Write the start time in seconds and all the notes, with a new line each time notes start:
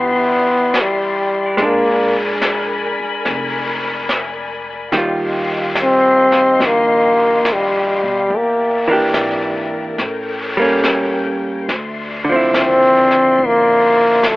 Already playing: G1 E3 B3 D4 G4 D5 E5 C6
0.74 snare, hi-hat pedal
0.81 G3
1.57 A#1 G#3 A#4 G#5 B5, brush sweep, snare
1.62 A#3 D4
2.42 snare, hi-hat pedal
3.00 muted upright bass stroke
3.25 F1, brush sweep, snare
4.09 snare, hi-hat pedal
4.91 D#2 D#3 G3 G4 D#5 F5 C6, brush sweep, snare
4.97 F4
5.75 snare, hi-hat pedal
5.83 C4
6.32 snare
6.60 A#1, brush sweep, snare
6.67 A#3
7.45 snare, hi-hat pedal
7.53 G3
8.03 B2
8.29 E2 A#4 D5 E5, brush sweep
8.37 A#3
8.88 E3 A#3 D4
8.93 G4
9.14 G#1, snare, hi-hat pedal
9.98 A1 A4 C#5 G5, brush sweep, snare
10.57 G3 A#3
10.62 C#4
10.84 snare, hi-hat pedal
11.68 D2 D5 E5 C6, brush sweep, snare
12.25 D3
12.29 F3 C4
12.36 E4
12.53 D#2, snare, hi-hat pedal
12.61 C4
13.11 snare
13.38 A1, brush sweep
13.47 A#3
14.23 snare, hi-hat pedal
14.30 A3